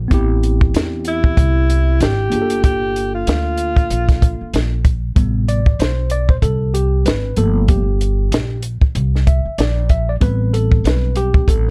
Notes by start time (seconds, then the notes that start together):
0.08 A1 B3 C4 E4, kick, closed hi-hat
0.14 G4
0.43 closed hi-hat
0.61 kick
0.74 E2, snare, closed hi-hat
1.05 E4, closed hi-hat
1.24 kick
1.37 C2, kick, closed hi-hat
1.70 closed hi-hat
2.00 G#1 G4, snare, closed hi-hat
2.30 G1 A#3 D4 F4, closed hi-hat
2.35 G#4
2.42 A4
2.50 closed hi-hat
2.64 G4, kick, closed hi-hat
2.96 closed hi-hat
3.15 F4
3.27 D2, snare, closed hi-hat
3.57 closed hi-hat
3.77 kick, closed hi-hat
3.90 A#1, closed hi-hat
4.09 kick, snare, closed hi-hat
4.22 kick, closed hi-hat
4.41 muted upright bass stroke
4.54 A#1, snare, closed hi-hat
4.85 kick, closed hi-hat
5.16 A1 C3 G3 B3, kick, closed hi-hat
5.48 D5, closed hi-hat
5.66 kick
5.79 B1 C5, snare, closed hi-hat
6.10 D5, closed hi-hat
6.29 C5, kick
6.42 C2 A4, kick, closed hi-hat
6.74 G4, closed hi-hat
7.05 G#1 B4, snare, closed hi-hat
7.36 G1 F3 A3 A#3 A4, closed hi-hat
7.68 G4, kick, closed hi-hat
8.01 closed hi-hat
8.32 A#1, snare, closed hi-hat
8.62 closed hi-hat
8.81 muted upright bass stroke, kick
8.95 C2, closed hi-hat
9.16 snare
9.27 E5, kick, closed hi-hat
9.45 muted upright bass stroke
9.58 A#1 D5, snare, closed hi-hat
9.89 E5, kick, closed hi-hat
10.09 D5
10.21 A1 G3 B3 C4 B4, kick, closed hi-hat
10.54 A4, closed hi-hat
10.72 kick
10.84 B1 B4, snare, closed hi-hat
11.15 G4, closed hi-hat
11.34 kick
11.48 A1 A4, kick, closed hi-hat